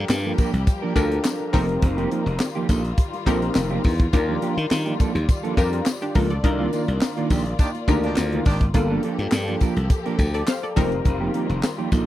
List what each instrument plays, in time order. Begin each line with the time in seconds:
Already playing: string section F3 G3 A#3 G4, analog polysynth D4 F4 A4 A#4
0.09 slap bass G2, muted clean electric guitar stroke, snare, clap, tambourine
0.25 clean electric guitar F3 A#3 D4 A4
0.38 clean electric guitar F3 A#3 D4 A#4, kick, closed hi-hat, tambourine
0.53 slap bass C2, muted clean electric guitar stroke, closed hi-hat
0.67 muted clean electric guitar stroke, kick, closed hi-hat, tambourine
0.82 clean electric guitar F3 A#3 D4 A#4
0.96 slap bass D2, analog polysynth D4 F4 A4 A#4, kick, closed hi-hat, tambourine
1.11 muted clean electric guitar stroke, closed hi-hat
1.24 muted clean electric guitar stroke, snare, clap, tambourine
1.40 muted clean electric guitar stroke
1.53 slap bass F1, string section D#3 G3 F4, clean electric guitar F3 A#3 D#4 A4, analog polysynth C4 D#4 G4 A#4, kick, open hi-hat, tambourine
1.69 muted clean electric guitar stroke, closed hi-hat
1.82 slap bass F1, muted clean electric guitar stroke, kick, closed hi-hat
1.97 clean electric guitar F3 A#3 D#4 G4, closed hi-hat
2.11 clean electric guitar F3 A#3 D#4 G4, closed hi-hat
2.26 slap bass F1, closed hi-hat
2.40 muted clean electric guitar stroke, snare, clap, tambourine
2.55 clean electric guitar F3 A#3 D#4 G4
2.69 slap bass A#1, clean electric guitar F3 A#3 D#4 A4, kick, closed hi-hat, tambourine
2.84 muted clean electric guitar stroke, closed hi-hat
2.97 muted clean electric guitar stroke, kick, closed hi-hat, tambourine
3.13 muted clean electric guitar stroke, closed hi-hat
3.26 slap bass A#1, clean electric guitar F3 A#3 D#4 A4, analog polysynth C4 D#4 G4 A#4, kick, closed hi-hat, tambourine
3.42 muted clean electric guitar stroke, closed hi-hat
3.55 slap bass F1, muted clean electric guitar stroke, snare, clap, tambourine
3.70 clean electric guitar F3 A#3 D#4 G4
3.84 slap bass E2, kick, open hi-hat, tambourine
3.99 muted clean electric guitar stroke, kick, closed hi-hat
4.13 slap bass D#2, string section G3 D5, analog polysynth D4 F4 G4 A#4, muted clean electric guitar stroke, kick, closed hi-hat, tambourine
4.28 clean electric guitar F3 A#3 D4 G4
4.41 clean electric guitar F3 A#3 D4 G4, closed hi-hat
4.57 slap bass D#3, muted clean electric guitar stroke, closed hi-hat
4.70 slap bass D#3, muted clean electric guitar stroke, snare, clap, tambourine
4.86 clean electric guitar F3 A#3 D4 G4, closed hi-hat
4.99 clean electric guitar F3 A#3 D4 A4, kick, closed hi-hat, tambourine
5.15 slap bass D#2, muted clean electric guitar stroke, closed hi-hat
5.28 muted clean electric guitar stroke, kick, closed hi-hat, tambourine
5.43 clean electric guitar F3 A#3 D4 A4, closed hi-hat
5.57 slap bass F2, analog polysynth D4 F4 G4 A#4, kick, closed hi-hat, tambourine
5.73 muted clean electric guitar stroke, closed hi-hat
5.86 muted clean electric guitar stroke, snare, clap, tambourine
6.01 analog polysynth D4 G4, muted clean electric guitar stroke, closed hi-hat
6.15 slap bass C#2, clean electric guitar F3 A#3 D4 A4, analog polysynth F4 A#4, kick, open hi-hat, tambourine
6.30 analog polysynth A4 D5, muted clean electric guitar stroke, closed hi-hat
6.44 slap bass C2, string section A#3 F4, analog polysynth D4 D#4 F4 A#4, muted clean electric guitar stroke, kick, closed hi-hat
6.59 clean electric guitar D#3 A#3 D4 F4
6.73 clean electric guitar D#3 A#3 D4 F4, closed hi-hat, tambourine
6.88 slap bass C2, muted clean electric guitar stroke, closed hi-hat
7.01 muted clean electric guitar stroke, snare, clap, tambourine
7.17 clean electric guitar D#3 A#3 D4 F4, closed hi-hat
7.30 slap bass A#1, clean electric guitar D#3 A#3 D4 G4, kick, open hi-hat, tambourine
7.46 muted clean electric guitar stroke, closed hi-hat
7.59 horn section D#3 D4 G4, muted clean electric guitar stroke, kick, closed hi-hat, tambourine
7.75 muted clean electric guitar stroke, closed hi-hat
7.88 slap bass D2, clean electric guitar D#3 A#3 D4 G4, analog polysynth D4 D#4 F4 A#4, kick, closed hi-hat, tambourine
8.03 horn section D#3 D4 G4, clean electric guitar D#3 A#3 D4 F4, closed hi-hat
8.16 slap bass D2, snare, clap, tambourine
8.32 clean electric guitar D#3 A#3 D4 F4, closed hi-hat
8.45 slap bass G#1, horn section D#3 D4 G4, kick, open hi-hat, tambourine
8.61 muted clean electric guitar stroke, kick, closed hi-hat
8.74 slap bass G1, string section F3 A#3 G4 A4, analog polysynth A#3 D4 F4 A4, muted clean electric guitar stroke, kick, closed hi-hat, tambourine
8.90 clean electric guitar F3 A#3 D4 A4
9.03 clean electric guitar F3 A#3 D4 A4, closed hi-hat
9.19 slap bass G2, closed hi-hat
9.32 slap bass G2, muted clean electric guitar stroke, snare, clap, tambourine
9.48 clean electric guitar F3 A#3 D4 A4, closed hi-hat
9.61 clean electric guitar F3 A#3 D4 A#4, kick, closed hi-hat, tambourine
9.76 slap bass C2, muted clean electric guitar stroke, closed hi-hat
9.90 muted clean electric guitar stroke, kick, closed hi-hat, tambourine
10.05 clean electric guitar F3 A#3 D4 A#4, closed hi-hat
10.19 slap bass D2, kick, closed hi-hat, tambourine
10.34 analog polysynth A4 D5, muted clean electric guitar stroke, closed hi-hat
10.47 analog polysynth C5 F5, muted clean electric guitar stroke, snare, clap, tambourine
10.63 analog polysynth A4 D5, muted clean electric guitar stroke, closed hi-hat
10.76 slap bass F1, string section D#3 G3 F4, clean electric guitar F3 A#3 D#4 A4, analog polysynth C4 D#4 G4 A#4, kick, open hi-hat, tambourine
10.91 muted clean electric guitar stroke, closed hi-hat
11.05 slap bass F1, muted clean electric guitar stroke, kick, closed hi-hat, tambourine
11.20 clean electric guitar F3 A#3 D#4 G4
11.34 clean electric guitar F3 A#3 D#4 G4, closed hi-hat
11.49 slap bass F1, closed hi-hat
11.63 muted clean electric guitar stroke, snare, clap, tambourine
11.78 clean electric guitar F3 A#3 D#4 G4
11.92 slap bass A#1, clean electric guitar F3 A#3 D#4 A4, kick, closed hi-hat, tambourine